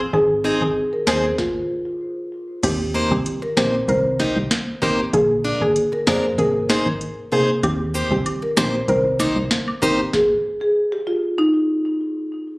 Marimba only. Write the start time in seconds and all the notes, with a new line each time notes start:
0.14 G#4
0.61 G#4
0.93 A#4
1.07 C5
1.39 F4
2.63 G4
3.11 G4
3.43 A#4
3.57 C5
3.89 C5
5.13 G#4
5.61 G#4
5.93 A#4
6.07 C5
6.38 A#4
7.63 G4
8.11 G4
8.43 A#4
8.57 C5
8.88 C5
10.13 G#4
10.61 G#4
10.92 G4
11.07 F4
11.38 D#4